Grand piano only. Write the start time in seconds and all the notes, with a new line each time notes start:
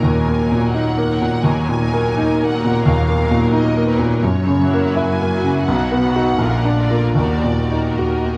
Already playing: D#2 A#2 A#3 D#4
0.03 D#2
0.28 A#3
0.52 A#2
0.74 D#4
0.97 A#3
1.22 A#2
1.44 D#2
1.69 A#2
1.93 A#3
2.18 D#4
2.42 A#3
2.64 A#2
2.86 D#2
3.08 A#3
3.31 A#2
3.53 D#4
3.77 A#3
3.99 A#2
4.23 F#2
4.47 C#3
4.73 A#3
4.96 E4
5.21 A#3
5.43 C#3
5.68 B1
5.92 B3
6.16 D#4 F#4
6.38 A#1
6.65 D4
6.91 F4 A#4
7.15 D#2
7.44 A#2
7.71 D#4
7.99 F#4
8.26 D#4